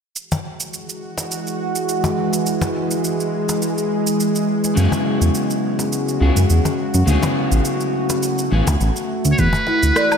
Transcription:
0.15 4.73 E3 medium
0.15 7.04 G#3 medium
0.15 2.44 F#4 medium
0.15 shaker soft
0.32 cajon bass medium
0.32 shaker soft
0.60 shaker medium
0.74 shaker soft
0.89 shaker soft
1.18 cajon slap medium
1.18 shaker medium
1.31 shaker soft
1.47 shaker soft
1.75 shaker medium
1.89 shaker soft
2.04 cajon bass medium
2.04 shaker soft
2.33 cajon slap soft
2.33 shaker medium
2.46 4.75 G#4 medium
2.46 shaker soft
2.61 cajon bass medium
2.61 cajon slap medium
2.61 shaker soft
2.91 shaker medium
3.04 shaker medium
3.20 shaker soft
3.49 cajon slap medium
3.49 shaker medium
3.62 shaker medium
3.78 shaker soft
4.07 shaker medium
4.20 shaker soft
4.36 shaker soft
4.64 cajon slap soft
4.64 shaker medium
4.75 4.87 F#2 loud
4.75 6.17 C#3 medium
4.75 7.06 C#3 medium
4.75 6.18 F#3 medium
4.75 6.18 B3 medium
4.75 6.19 E4 medium
4.75 9.35 F#4 medium
4.75 6.19 G#4 medium
4.75 shaker medium
4.92 cajon bass medium
4.92 shaker soft
5.21 5.30 E2 medium
5.21 shaker medium
5.35 shaker medium
5.50 shaker soft
5.79 cajon slap medium
5.79 shaker medium
5.92 shaker soft
6.08 shaker soft
6.20 6.31 C#2 medium
6.20 6.37 C#3 medium
6.20 6.38 F#3 medium
6.20 6.38 B3 medium
6.20 6.38 E4 soft
6.20 6.38 G#4 medium
6.37 6.45 F#2 medium
6.37 shaker medium
6.50 6.60 E2 medium
6.50 shaker medium
6.65 cajon bass medium
6.65 shaker soft
6.94 7.03 F#2 loud
6.94 cajon slap soft
6.94 shaker medium
7.06 7.17 D2 loud
7.06 8.48 C#3 medium
7.06 8.48 F#3 medium
7.06 9.36 A3 medium
7.06 8.49 B3 medium
7.06 8.49 E4 medium
7.06 shaker medium
7.10 8.50 G#4 medium
7.23 cajon bass medium
7.23 cajon slap medium
7.23 shaker soft
7.52 7.60 A1 medium
7.52 shaker medium
7.65 shaker medium
7.80 shaker soft
8.10 cajon slap medium
8.10 shaker medium
8.23 shaker medium
8.38 shaker soft
8.51 8.62 A1 medium
8.51 8.68 C#3 medium
8.51 8.68 F#3 medium
8.51 8.69 B3 medium
8.51 8.69 E4 medium
8.51 8.69 G#4 medium
8.67 8.76 D2 medium
8.67 cajon bass medium
8.67 shaker medium
8.81 8.91 A1 medium
8.81 shaker soft
8.96 shaker soft
9.25 9.34 D2 medium
9.25 cajon slap soft
9.25 shaker medium
9.32 9.40 C#5 medium
9.38 9.49 E2 medium
9.38 10.18 E3 medium
9.38 10.18 G#3 medium
9.38 10.18 F#4 medium
9.38 10.18 B4 loud
9.38 kick loud
9.38 shaker medium
9.53 cajon bass medium
9.53 shaker soft
9.67 9.95 E4 medium
9.67 cajon slap medium
9.83 9.91 D2 medium
9.83 shaker medium
9.96 10.11 D5 medium
9.96 cross-stick medium
9.96 shaker medium
10.12 low woodblock medium
10.12 shaker soft

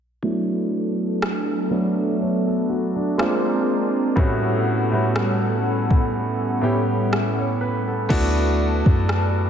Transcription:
0.23 1.63 F#3 loud
0.23 3.16 F#3 medium
0.23 1.63 A3 medium
0.23 1.63 B3 medium
0.23 3.16 B3 medium
0.23 3.15 D4 medium
0.23 1.63 D4 loud
0.23 1.64 E4 loud
0.23 3.16 A4 medium
1.22 cross-stick loud
1.70 3.18 F#3 medium
1.70 3.18 A3 medium
1.70 3.19 B3 medium
1.70 2.20 D4 medium
1.70 2.21 F#4 medium
2.20 2.45 C#5 medium
2.47 2.68 A4 medium
2.69 2.95 F#4 medium
2.96 3.18 D4 medium
3.18 4.11 G#3 medium
3.18 4.16 G#3 medium
3.18 4.11 A#3 medium
3.18 4.16 C4 medium
3.18 4.12 C4 medium
3.18 4.16 D4 medium
3.18 4.12 D4 medium
3.18 4.12 F4 medium
3.18 4.16 A#4 medium
3.18 cross-stick loud
4.16 4.87 A2 loud
4.16 4.88 G3 medium
4.16 8.06 G3 medium
4.16 4.88 B3 medium
4.16 8.06 B3 medium
4.16 4.88 C#4 loud
4.16 8.06 C#4 medium
4.16 4.88 E4 medium
4.16 4.88 F#4 loud
4.16 8.06 A4 medium
4.16 8.06 F#5 medium
4.16 kick loud
4.92 6.53 A2 medium
4.92 6.53 G3 medium
4.92 6.53 B3 medium
4.92 6.54 C#4 medium
4.92 6.54 E4 medium
4.92 6.54 F#4 medium
5.16 cross-stick loud
5.91 kick medium
6.61 8.02 A2 medium
6.61 8.02 G3 medium
6.61 8.02 B3 medium
6.61 8.02 C#4 medium
6.61 8.02 E4 medium
6.61 8.03 G4 medium
7.13 cross-stick loud
7.39 7.60 C#5 medium
7.61 7.86 B4 medium
7.88 8.34 A4 medium
8.09 8.83 D2 loud
8.09 9.49 A3 loud
8.09 9.49 B3 medium
8.09 9.50 D4 loud
8.09 9.50 E4 loud
8.09 9.50 F#4 medium
8.09 9.50 F#4 loud
8.09 9.50 B4 medium
8.09 9.50 D5 medium
8.09 9.50 A5 medium
8.09 kick loud
8.09 crash medium
8.86 9.50 F#2 loud
8.86 kick medium
9.09 cross-stick loud

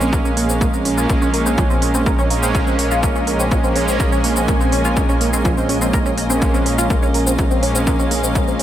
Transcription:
0.00 1.07 A#1 medium
0.00 0.83 G#3 medium
0.00 0.83 A#3 medium
0.00 0.09 C4 medium
0.00 0.83 C#4 medium
0.00 8.63 F4 medium
0.00 8.63 A#4 medium
0.00 8.63 D#5 medium
0.00 2.64 F5 medium
0.00 shaker medium
0.13 0.18 A#4 medium
0.13 kick loud
0.13 shaker soft
0.25 0.30 C#4 loud
0.25 shaker soft
0.37 0.45 A#3 medium
0.37 open hi-hat loud
0.49 0.54 C4 medium
0.49 shaker medium
0.61 0.70 A#3 medium
0.61 kick loud
0.61 shaker medium
0.74 0.85 C4 medium
0.74 shaker soft
0.85 2.28 G#3 medium
0.85 2.28 A#3 medium
0.85 2.28 C#4 medium
0.85 0.94 C#4 medium
0.85 open hi-hat loud
0.98 1.06 F4 loud
0.98 shaker medium
1.09 8.63 A#1 medium
1.09 1.15 A#3 medium
1.09 kick loud
1.09 shaker medium
1.22 1.27 C#4 loud
1.22 shaker soft
1.34 1.42 A#3 medium
1.34 open hi-hat loud
1.46 1.51 C4 medium
1.46 shaker medium
1.58 1.63 F3 loud
1.58 kick loud
1.58 shaker medium
1.70 1.82 C4 medium
1.70 shaker soft
1.82 1.91 C#4 medium
1.82 open hi-hat loud
1.94 2.03 C4 medium
1.94 shaker medium
2.06 2.11 A#4 medium
2.06 kick loud
2.06 shaker soft
2.19 2.24 C#4 loud
2.19 shaker soft
2.30 3.61 G#3 medium
2.30 3.61 A#3 medium
2.30 2.39 A#3 medium
2.30 3.61 C#4 loud
2.30 open hi-hat loud
2.43 2.48 C4 medium
2.43 shaker medium
2.55 2.63 A#3 medium
2.55 kick loud
2.55 shaker medium
2.61 6.51 G#5 medium
2.67 2.78 C4 medium
2.67 shaker soft
2.79 2.87 C#4 medium
2.79 open hi-hat loud
2.91 2.99 F4 loud
2.91 shaker medium
3.03 3.08 A#3 medium
3.03 kick loud
3.03 shaker medium
3.15 3.20 C#4 loud
3.15 shaker soft
3.27 3.36 A#3 medium
3.27 open hi-hat loud
3.40 3.45 C4 medium
3.40 shaker medium
3.51 3.57 F3 loud
3.51 kick loud
3.51 shaker medium
3.64 6.15 G#3 medium
3.64 6.15 A#3 medium
3.64 3.75 C4 medium
3.64 6.15 C#4 medium
3.64 shaker soft
3.76 3.84 C#4 medium
3.76 open hi-hat loud
3.88 3.96 C4 medium
3.88 shaker medium
4.00 4.05 A#4 medium
4.00 kick loud
4.00 shaker medium
4.12 4.17 C#4 loud
4.12 shaker soft
4.24 4.33 A#3 medium
4.24 open hi-hat loud
4.36 4.41 C4 medium
4.36 shaker medium
4.48 4.57 A#3 medium
4.48 kick loud
4.48 shaker medium
4.61 4.72 C4 medium
4.61 shaker soft
4.72 4.81 C#4 medium
4.72 open hi-hat loud
4.85 4.93 F4 loud
4.85 shaker medium
4.97 5.02 A#3 medium
4.97 kick loud
4.97 shaker medium
5.09 5.14 C#4 loud
5.09 shaker soft
5.21 5.29 A#3 medium
5.21 open hi-hat medium
5.33 5.38 C4 medium
5.33 shaker medium
5.45 5.50 F3 loud
5.45 kick loud
5.45 shaker medium
5.57 5.69 C4 medium
5.57 shaker soft
5.69 5.78 C#4 medium
5.69 open hi-hat loud
5.82 5.90 C4 medium
5.82 shaker medium
5.93 5.99 A#4 medium
5.93 kick loud
5.93 shaker medium
6.06 6.11 C#4 loud
6.06 shaker soft
6.18 7.48 G#3 medium
6.18 6.26 A#3 medium
6.18 7.48 A#3 medium
6.18 7.48 C#4 loud
6.18 open hi-hat loud
6.30 6.35 C4 medium
6.30 shaker medium
6.42 6.50 A#3 medium
6.42 kick loud
6.42 shaker medium
6.49 8.63 F5 medium
6.54 6.65 C4 medium
6.54 shaker soft
6.66 6.75 C#4 medium
6.66 open hi-hat loud
6.78 6.86 F4 loud
6.78 shaker medium
6.90 6.95 A#3 medium
6.90 kick loud
6.90 shaker medium
7.03 7.07 C#4 loud
7.03 shaker soft
7.14 7.23 A#3 medium
7.14 open hi-hat loud
7.27 7.32 C4 medium
7.27 shaker medium
7.39 7.44 F3 loud
7.39 kick loud
7.39 shaker medium
7.51 8.57 G#3 medium
7.51 8.57 A#3 medium
7.51 7.62 C4 medium
7.51 8.57 C#4 medium
7.51 shaker soft
7.63 7.71 C#4 medium
7.63 open hi-hat loud
7.75 7.83 C4 medium
7.75 shaker medium
7.87 7.92 A#4 medium
7.87 kick loud
7.87 shaker medium
7.99 8.04 C#4 loud
7.99 shaker soft
8.11 8.20 A#3 medium
8.11 open hi-hat loud
8.24 8.28 C4 medium
8.24 shaker medium
8.35 8.44 A#3 medium
8.35 kick loud
8.35 shaker medium
8.48 8.59 C4 medium
8.48 shaker soft
8.59 8.63 G#3 medium
8.59 8.63 A#3 medium
8.59 8.63 C#4 medium
8.59 open hi-hat loud

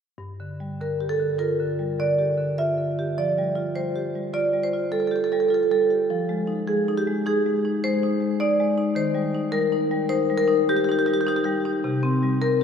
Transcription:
0.18 3.12 G2 soft
0.40 0.71 D3 soft
0.60 0.91 G3 soft
0.81 1.11 D3 soft
0.81 1.08 A#4 soft
1.01 1.31 G4 soft
1.09 1.37 A4 medium
1.19 1.51 D3 soft
1.39 1.70 F4 soft
1.39 1.95 A#4 medium
1.60 1.90 D3 soft
1.79 2.10 G3 soft
1.99 2.30 D3 soft
1.99 2.56 D5 medium
2.19 2.50 G4 soft
2.38 2.69 D3 soft
2.58 2.90 F4 soft
2.58 3.15 E5 medium
2.78 3.09 D3 soft
2.99 3.18 G4 soft
3.18 6.05 F3 soft
3.18 3.75 D5 medium
3.38 3.69 G3 soft
3.56 3.88 F4 soft
3.75 4.07 G3 soft
3.75 4.32 C5 medium
3.96 4.27 G4 soft
4.15 4.47 G3 soft
4.33 4.65 F4 soft
4.33 4.62 D5 medium
4.53 4.85 G3 soft
4.64 4.92 C5 medium
4.73 5.05 F4 soft
4.91 5.23 G3 soft
4.91 5.00 A4 medium
5.00 5.07 A4 soft
5.07 5.43 G4 soft
5.07 5.16 A4 soft
5.16 5.24 A4 soft
5.24 5.32 A4 soft
5.32 5.63 G3 soft
5.32 5.40 A4 soft
5.40 5.48 A4 soft
5.48 5.81 F4 soft
5.48 5.54 A4 soft
5.54 5.63 A4 soft
5.63 5.71 A4 soft
5.71 6.01 G3 soft
5.71 5.75 A4 soft
5.91 6.09 G4 soft
6.10 8.93 F3 soft
6.29 6.59 G#3 soft
6.47 6.78 D#4 soft
6.67 6.99 G#3 soft
6.67 6.95 G#4 medium
6.88 7.18 D#4 soft
6.97 7.24 G4 medium
7.07 7.37 G#3 soft
7.26 7.56 D#4 soft
7.26 7.80 G#4 medium
7.46 7.75 G#3 soft
7.65 7.94 D#4 soft
7.84 8.14 G#3 soft
7.84 8.38 C5 medium
8.03 8.33 D#4 soft
8.21 8.51 G#3 soft
8.40 8.71 D#4 soft
8.40 8.94 D5 medium
8.60 8.89 G#3 soft
8.78 8.96 D#4 soft
8.95 11.80 D#3 medium
8.95 9.51 C5 medium
9.15 9.45 G3 soft
9.35 9.65 D#4 soft
9.52 9.84 G3 soft
9.52 10.08 A#4 medium
9.72 10.03 D#4 soft
9.91 10.22 G3 soft
10.09 10.41 D#4 soft
10.09 10.38 C5 medium
10.30 10.61 G3 soft
10.38 10.66 A#4 medium
10.48 10.80 D#4 soft
10.69 11.00 G3 soft
10.69 10.77 G4 medium
10.77 10.84 G4 medium
10.84 10.92 G4 medium
10.89 11.19 D#4 soft
10.89 10.99 G4 medium
10.99 11.06 G4 medium
11.06 11.38 G3 soft
11.06 11.14 G4 medium
11.14 11.21 G4 medium
11.21 11.28 G4 medium
11.27 11.57 D#4 medium
11.27 11.36 G4 medium
11.36 11.44 G4 medium
11.44 11.77 G3 soft
11.44 11.52 G4 medium
11.65 11.85 D#4 soft
11.84 12.64 C3 medium
12.03 12.34 C4 medium
12.23 12.54 G3 soft
12.42 12.64 C4 soft
12.42 12.64 A#4 medium

